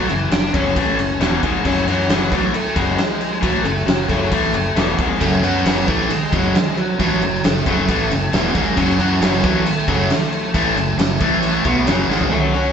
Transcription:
0.09 F#1 F#2 C#3 E3 E4, crash
0.31 F#1 F#2 C#3 D4 D5, snare, crash
0.53 F#1 F#2 C#3 F#3 C#4 C#5, kick, crash
0.76 A1 A2 E3 A3, kick, crash
0.98 F#1 F#2 C#3, crash
1.20 E1 E2 B2 E3, snare, crash
1.43 G#1 G#2 D#3 G#3, kick, crash
1.65 F#1 F#2 C#3 F#3 C#4 C#5, kick, crash
1.87 F#2 E3 F#3 C#4 E4 F#4, crash
2.00 snare
2.08 F#1 F#2 C#3 F#3, snare, crash
2.31 A1 A2 E3 F#3 A3 F#4, kick, crash
2.53 A3 A4, muted fingered electric bass stroke, muted overdriven electric guitar stroke, crash
2.75 F#1 F#2 C#3 F#3 G#3 G#4, kick, crash
2.98 snare, crash
3.21 crash
3.41 A1 A2 E3 F#3 A3 F#4, kick, crash
3.64 F#1 F#2 C#3 A3 A4, crash
3.77 snare
3.86 F#1 F#2 C#3 F#3 F#4, snare, crash
4.08 F#1 F#2 C#3 F#3 A3 A4, kick, crash
4.32 A1 A2 E3 A3, kick, crash
4.53 F#1 F#2 C#3, crash
4.75 E1 E2 B2 E3, snare, crash
4.98 G#1 G#2 D#3 G#3, kick, crash
5.20 F#1 F#2 C#3 F#3 A3 A4, kick, crash
5.42 F#2 F#3 B3 C#4 F#4 B4, crash
5.56 snare
5.65 F#1 F#2 C#3 F#3, snare, crash
5.87 A1 A2 E3 A3 A4, kick, crash
6.10 G#3 G#4, muted fingered electric bass stroke, muted distorted electric guitar stroke, muted overdriven electric guitar stroke, crash
6.32 F#1 F#2 C#3 F#3, kick, crash
6.55 snare, crash
6.77 F#3 F#4, crash
6.99 A1 A2 E3 F#3 A3 F#4, kick, crash
7.21 F#1 F#2 C#3, crash
7.34 snare
7.43 F#1 F#2 C#3 A3 A4, snare, crash
7.66 F#1 F#2 C#3 F#3, kick, crash
7.88 A1 A2 E3 A3, kick, crash
8.10 F#1 F#2 C#3, crash
8.32 E1 E2 B2 E3, snare, crash
8.54 G#1 G#2 D#3 G#3, kick, crash
8.76 F#1 F#2 C#3 F#3 C#4 C#5, kick, crash
8.99 F#2 E3 F#3 C#4 E4 F#4, crash
9.21 F#1 F#2 C#3 F#3, snare, crash
9.43 A1 A2 E3 F#3 A3 F#4, kick, crash
9.65 A3 A4, muted overdriven electric guitar stroke, muted fingered electric bass stroke, muted distorted electric guitar stroke, crash
9.88 F#1 F#2 C#3 F#3 A3 A4, kick, crash
10.10 snare, crash
10.32 crash
10.54 A1 A2 E3 A3, kick, crash
10.76 F#1 F#2 C#3, crash
10.98 F#1 F#2 C#3, snare, crash
11.20 A1 A2 E3 A3, kick, crash
11.43 crash
11.65 B1 B2 F#3 B3, kick, crash
11.86 F#1 F#2 C#3 F#3, snare, crash
12.09 G#1 G#2 D#3 G#3, snare
12.21 floor tom
12.31 F#2 C#3 F#3 A3 A4
12.53 F#3 C#4 F#4 C#5

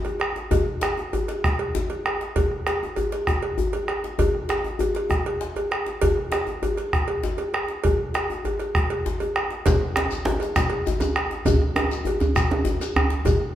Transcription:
0.05 bombo rim, cowbell, djembe tone
0.20 bombo rim, cowbell
0.36 djembe slap
0.51 bombo low, cowbell, djembe tone, djembe bass
0.67 djembe slap
0.81 bombo rim, cowbell, djembe slap
0.98 djembe tone
1.13 bombo rim, cowbell, djembe bass
1.28 cowbell, djembe slap
1.44 bombo rim, bombo low, djembe slap, djembe tone
1.59 cowbell
1.75 djembe slap, djembe bass
1.90 cowbell, djembe tone
2.05 bombo rim, cowbell, djembe slap
2.21 bombo rim, djembe slap
2.36 bombo rim, bombo low, cowbell, djembe tone, djembe bass
2.52 bombo rim
2.67 bombo rim, cowbell, djembe slap
2.83 djembe tone
2.96 cowbell, djembe bass
3.12 cowbell, djembe slap
3.27 bombo rim, bombo low, djembe slap, djembe tone
3.42 cowbell
3.58 djembe bass
3.73 bombo rim, cowbell, djembe tone
3.88 bombo rim, cowbell
4.04 djembe slap
4.19 bombo rim, bombo low, cowbell, djembe tone, djembe bass
4.35 bombo rim
4.49 bombo rim, cowbell, djembe slap
4.64 djembe tone
4.79 cowbell, djembe bass
4.95 cowbell, djembe slap
5.10 bombo rim, bombo low, djembe slap, djembe tone
5.26 cowbell
5.41 djembe slap
5.56 bombo rim, cowbell, djembe tone
5.71 bombo rim, cowbell
5.86 djembe slap
6.01 bombo rim, bombo low, cowbell, djembe tone, djembe bass
6.17 bombo rim
6.32 bombo rim, cowbell, djembe slap
6.47 djembe tone
6.63 cowbell, djembe bass
6.77 cowbell, djembe slap
6.93 bombo rim, bombo low, djembe slap, djembe tone
7.08 cowbell
7.24 djembe slap, djembe bass
7.38 bombo rim, cowbell, djembe tone
7.54 bombo rim, cowbell
7.68 djembe slap
7.84 bombo low, cowbell, djembe tone, djembe bass
8.14 bombo rim, cowbell, djembe slap
8.30 djembe tone
8.45 cowbell, djembe slap, djembe bass
8.59 cowbell, djembe slap
8.75 bombo rim, bombo low, djembe tone
8.90 cowbell, djembe slap
9.06 djembe slap, djembe bass
9.20 cowbell, djembe tone
9.36 bombo rim, cowbell, djembe slap
9.51 djembe slap
9.66 bombo rim, bombo low, cowbell, djembe slap, djembe tone, djembe bass, shekere
9.81 bombo rim
9.96 bombo rim, cowbell, djembe slap
10.11 djembe tone, shekere
10.25 cowbell, djembe slap, djembe bass
10.40 cowbell, djembe slap, shekere
10.56 bombo rim, bombo low, djembe slap, djembe tone, shekere
10.70 cowbell
10.86 djembe slap, djembe bass, shekere
11.00 bombo rim, cowbell, djembe tone, shekere
11.02 djembe tone
11.16 bombo rim, cowbell
11.31 djembe slap
11.45 bombo rim, bombo low, cowbell, djembe tone, djembe bass, shekere
11.62 bombo rim
11.76 bombo rim, cowbell, djembe slap, djembe tone
11.91 djembe tone, shekere
12.05 cowbell, djembe bass
12.20 cowbell, djembe slap, djembe bass, shekere
12.36 bombo rim, bombo low, djembe slap, djembe tone, shekere
12.51 cowbell, djembe tone
12.65 djembe slap, djembe bass, shekere
12.81 bombo rim, cowbell, djembe tone, shekere
12.96 bombo rim, cowbell, djembe bass
13.10 djembe slap
13.25 bombo rim, bombo low, cowbell, djembe tone, djembe bass, shekere
13.41 bombo rim

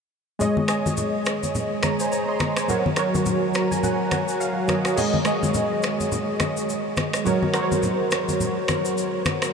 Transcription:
0.39 G#3 G#4 C#5 D#5, low conga, shaker
0.57 high conga
0.67 G#3 G#4 C#5 D#5, finger snap, cross-stick, shaker
0.86 high conga, shaker
0.97 low conga, shaker
1.25 finger snap, cross-stick, shaker
1.43 high conga, shaker
1.55 low conga, shaker
1.83 C#5 A#5, finger snap, cross-stick, high conga, shaker
2.00 C5 G#5, shaker
2.12 C#5 A#5, shaker
2.28 D#5 C6
2.40 C#5 A#5, finger snap, cross-stick, high conga, shaker
2.57 C5 G#5, finger snap, cross-stick, shaker
2.68 F#3 F#4 A#4 C#5, low conga, shaker
2.86 high conga
2.96 F#3 F#4 A#4 C#5, finger snap, cross-stick, shaker
3.15 high conga, shaker
3.26 low conga, shaker
3.54 A#5, finger snap, cross-stick, shaker
3.71 G#5, high conga, shaker
3.83 F#5, low conga, shaker
4.11 F#5, finger snap, cross-stick, high conga, shaker
4.28 shaker
4.40 F5, shaker
4.68 F#3 F#4 A#4 C#5 D#5, finger snap, cross-stick, high conga, shaker
4.85 finger snap, cross-stick, shaker
4.96 G#3 G#4 C#5 D#5, crash, low conga, shaker
5.14 high conga
5.25 G#3 G#4 C#5 D#5, finger snap, cross-stick, shaker
5.43 high conga, shaker
5.54 low conga, shaker
5.83 finger snap, cross-stick, shaker
6.00 high conga, shaker
6.12 low conga, shaker
6.40 finger snap, cross-stick, high conga, shaker
6.57 shaker
6.69 shaker
6.97 finger snap, cross-stick, high conga, shaker
7.13 finger snap, cross-stick, shaker
7.25 F#3 F#4 A#4 C#5, low conga, shaker
7.42 high conga
7.53 F#3 F#4 A#4 C5, finger snap, cross-stick, shaker
7.62 C#5
7.72 high conga, shaker
7.83 low conga, shaker
8.11 finger snap, cross-stick, shaker
8.29 high conga, shaker
8.40 low conga, shaker
8.68 finger snap, cross-stick, high conga, shaker
8.85 shaker
8.98 shaker
9.25 finger snap, cross-stick, high conga, shaker
9.42 finger snap, cross-stick, shaker

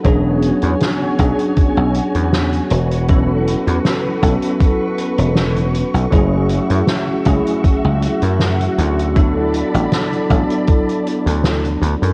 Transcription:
0.03 E1 F#3 B3 C#4 D4 F#4 G#4 C#5 G#5, kick, closed hi-hat
0.42 closed hi-hat
0.62 E2, closed hi-hat
0.80 snare, closed hi-hat
1.17 B1 F#3 B3 C#4 D4 G#4, kick, closed hi-hat
1.39 closed hi-hat
1.56 muted slap bass stroke, kick, closed hi-hat
1.77 B1
1.94 closed hi-hat
2.15 E2, closed hi-hat
2.33 snare, closed hi-hat
2.53 closed hi-hat
2.70 E1 B4 C#6, closed hi-hat
2.91 closed hi-hat
3.08 F#3 B3 C#4 E4 A4, kick, closed hi-hat
3.47 closed hi-hat
3.67 E2, closed hi-hat
3.85 snare, closed hi-hat
4.21 B1 F#3 B3 C#4 E4 A4, kick, closed hi-hat
4.42 closed hi-hat
4.61 kick, closed hi-hat
4.98 closed hi-hat
5.18 E1, closed hi-hat
5.35 snare, closed hi-hat
5.56 closed hi-hat
5.75 closed hi-hat
5.94 B1, closed hi-hat
6.11 F#1 F#3 A3 C#4 E4 F#4 G#4 E5, kick, closed hi-hat
6.49 closed hi-hat
6.70 F#2, closed hi-hat
6.87 snare, closed hi-hat
7.25 C#2 F#3 A3 C#4 E4 G#4, kick, closed hi-hat
7.47 closed hi-hat
7.64 muted slap bass stroke, kick, closed hi-hat
7.85 C#2
8.02 closed hi-hat
8.22 F#2, closed hi-hat
8.40 snare, closed hi-hat
8.61 closed hi-hat
8.78 D2, closed hi-hat
8.99 closed hi-hat
9.15 F#3 B3 D4 E4 A4 D5 A5 B5, kick, closed hi-hat
9.54 closed hi-hat
9.74 A1, closed hi-hat
9.92 snare, closed hi-hat
10.13 closed hi-hat
10.28 A1 F#3 B3 D4 E4 A4, kick, closed hi-hat
10.50 closed hi-hat
10.67 kick, closed hi-hat
10.89 closed hi-hat
11.07 closed hi-hat
11.26 D2, closed hi-hat
11.44 snare, closed hi-hat
11.65 closed hi-hat
11.82 D2, closed hi-hat
12.02 F#2, closed hi-hat

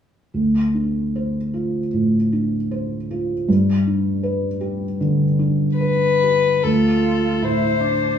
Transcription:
0.34 D2
0.74 D4
1.16 C5
1.54 F4
1.93 A2
2.32 D4
2.71 C5
3.11 F4
3.48 G2
3.87 D4
4.23 B4
4.61 G4
5.00 D3
5.39 D4
5.78 B4
6.23 G4
6.62 D2 F4 A4
7.42 A2 E4 C5
7.81 D4

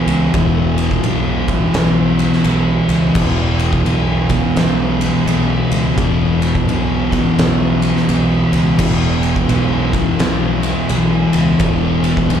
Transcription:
Already playing: E2 B2 E3
0.06 C#2, ride
0.33 E1 E2 B2 E3, kick, ride
0.78 ride
0.91 kick
1.03 B1, ride
1.48 E2 B2 E3, kick, ride
1.74 B1, snare, ride
2.19 ride
2.33 snare
2.44 B1 E2 B2 E3, ride
2.88 C#2, ride
3.14 E1 E2 B2 E3, kick, crash
3.59 ride
3.73 kick
3.86 B1, ride
4.29 E2 B2 E3, kick, ride
4.56 B1, snare, ride
5.01 ride
5.26 B1 E2 B2 E3, ride
5.71 C#2, ride
5.96 E1 E2 B2 E3, kick, ride
6.42 ride
6.55 kick
6.66 B1, ride
7.11 E2 B2 E3, kick, ride
7.38 B1, snare, ride
7.82 ride
7.97 snare
8.08 B1 E2 B2 E3, ride
8.52 C#2, ride
8.79 E1 E2 B2 E3, kick, crash
9.23 ride
9.36 kick
9.49 B1, ride
9.92 E2 B2 E3, kick, ride
10.19 B1, snare, ride
10.63 ride
10.89 B1 E2 B2 E3, ride
11.33 C#2, ride
11.59 E1 E2 B2 E3, kick, ride
12.04 ride
12.17 kick
12.29 B1, ride

